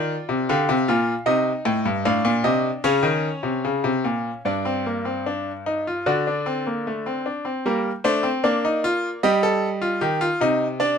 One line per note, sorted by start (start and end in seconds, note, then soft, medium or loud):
0.00 0.14 D#3 medium
0.00 0.47 F4 medium
0.00 0.47 D5 medium
0.29 0.48 C3 medium
0.49 0.68 D3 loud
0.49 0.73 G4 medium
0.49 1.25 F5 medium
0.69 0.88 C3 loud
0.88 1.13 A#2 medium
0.88 1.12 F4 medium
1.26 1.50 C3 medium
1.26 2.03 D#4 medium
1.26 1.51 D#5 medium
1.65 1.85 A2 loud
1.65 1.90 G5 medium
1.85 2.05 G2 medium
2.05 2.24 A2 loud
2.05 2.82 D4 medium
2.05 2.30 F5 medium
2.25 2.44 A#2 loud
2.44 2.69 C3 medium
2.44 2.69 D#5 medium
2.84 3.03 C#3 loud
2.84 4.40 C#4 loud
2.84 4.40 C#5 medium
3.03 3.28 D#3 medium
3.43 3.63 C3 medium
3.65 3.84 C#3 medium
3.84 4.03 C3 medium
4.05 4.29 A#2 medium
4.45 6.01 G2 medium
4.45 4.65 D4 medium
4.45 6.02 D5 medium
4.65 4.84 C4 medium
4.86 5.05 A#3 medium
5.05 5.24 C4 medium
5.26 5.51 D4 medium
5.66 5.85 D#4 medium
5.87 6.06 F4 medium
6.06 7.22 D3 medium
6.06 6.25 F#4 medium
6.06 7.22 D5 medium
6.27 6.46 D4 medium
6.46 6.65 C4 medium
6.67 6.85 A#3 medium
6.87 7.05 A3 medium
7.06 7.25 C4 medium
7.26 7.45 D4 medium
7.45 7.64 C4 medium
7.66 7.90 G3 medium
7.66 7.90 A#3 medium
7.66 7.90 A#4 medium
8.04 8.29 A3 medium
8.04 8.24 D4 loud
8.04 8.29 C5 medium
8.23 8.43 C4 medium
8.44 9.20 A#3 medium
8.44 8.63 D4 medium
8.44 9.20 D5 medium
8.65 8.83 D#4 medium
8.84 9.08 F4 loud
9.23 9.99 G3 loud
9.23 9.42 G4 loud
9.23 10.76 D#5 medium
9.43 9.67 A4 medium
9.82 10.01 F4 medium
10.01 10.26 D#3 medium
10.01 10.20 G4 medium
10.21 10.40 F4 loud
10.41 10.98 C3 medium
10.41 10.65 D#4 loud
10.80 10.98 D4 medium
10.80 10.98 D5 medium